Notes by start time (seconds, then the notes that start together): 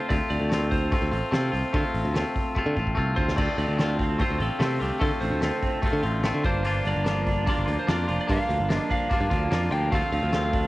Already playing: C4 F4
0.09 D2 A3 C4 F4 D5, kick, open hi-hat
0.30 D2 D5, open hi-hat
0.40 D2
0.49 A3 C4 F4, snare, open hi-hat
0.71 C5, kick, open hi-hat
0.92 A3 C4 F4, kick, open hi-hat
1.02 D2
1.11 A1 C4 F4, open hi-hat
1.31 C3 A3 C4 F4, snare, open hi-hat
1.52 C2 C4 F4, open hi-hat
1.73 D3 A3 C4 F4, kick, open hi-hat
1.94 A1, open hi-hat
2.05 D2
2.14 A3 C4 F4, snare, open hi-hat
2.36 kick, open hi-hat
2.55 A3 C4 F4, kick
2.66 D3
2.76 A1 C4 F4, kick
2.87 kick
2.95 C2 A3 C4 F4, kick
3.16 D2 C4 F4 C5, kick
3.28 snare
3.36 D2 D3 A3 C4 F4 D5, kick, crash
3.58 D2 A3 D5, open hi-hat
3.68 D2
3.78 D3 A3 C4 F4, snare, open hi-hat
3.99 C4, kick, open hi-hat
4.19 A3 C4 F4 C5, kick, open hi-hat
4.30 D2
4.39 A1 D3 C4 F4 A4, open hi-hat
4.59 C3 A3 C4 F4 A4, snare, open hi-hat
4.80 C2 D3 C4 F4 G4, open hi-hat
4.99 D3 A3 C4 F4 A4, kick, open hi-hat
5.21 A1 A3 C5, open hi-hat
5.32 D2
5.41 D3 A3 C4 F4, snare, open hi-hat
5.63 C4, kick, open hi-hat
5.82 A3 C4 F4, kick, open hi-hat
5.93 D3
6.03 A1 D3 C4 F4, open hi-hat
6.23 A3 C4 F4, snare, open hi-hat
6.34 D3
6.44 G1 G2 A#3 D4 F4 C5, kick, open hi-hat
6.63 G2 A#3 D4 F4, open hi-hat
6.85 G1 D3 D5, open hi-hat
6.96 G1
7.04 F3 A#3 D4 F4, snare, open hi-hat
7.27 D4, kick, open hi-hat
7.46 A#3 D4 F4 D5, kick, open hi-hat
7.58 G1
7.66 D2 F3 D4 F4, open hi-hat
7.79 C5
7.87 F2 A#3 D4 F4 D5, snare, open hi-hat
8.08 F1 F3 D4 F4, open hi-hat
8.21 D5
8.27 G2 A#3 D4 F4, kick, open hi-hat
8.32 F5
8.49 D2 D3, open hi-hat
8.60 G1
8.68 F3 A#3 D4 F4, snare, open hi-hat
8.75 D#5
8.90 D4 F5, kick, open hi-hat
9.09 A#3 D4 F4, kick, open hi-hat
9.21 G2
9.30 D2 F3 D4 F4, kick, open hi-hat
9.50 F2 A#3 D4, snare, open hi-hat
9.54 F4
9.71 D2 F3 D4 F4 G5, open hi-hat
9.91 D2 D3 A3 C4 F4 F5, kick, open hi-hat
10.12 D2 F3 F5, open hi-hat
10.23 D2
10.32 F3 A3 C4 F4, snare, open hi-hat
10.53 D4, kick, open hi-hat